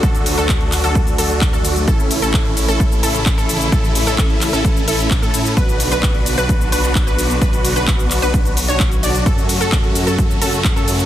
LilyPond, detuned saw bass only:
\new Staff \with { instrumentName = "Detuned saw bass" } { \clef bass \time 4/4 \key a \major \tempo 4 = 130 d,8. d,4 d,8. d,8. d,8. | a,,8. a,,4 a,,8. a,,8. a,,8. | a,,8. a,,4 a,,8. a,,8. a,8. | b,,8. b,,4 b,,8. b,,8. b,,8. |
b,,8. b,,4 b,,4 b,,8. b,,8 | fis,8. fis,4 fis,8. fis,8. fis,8. | }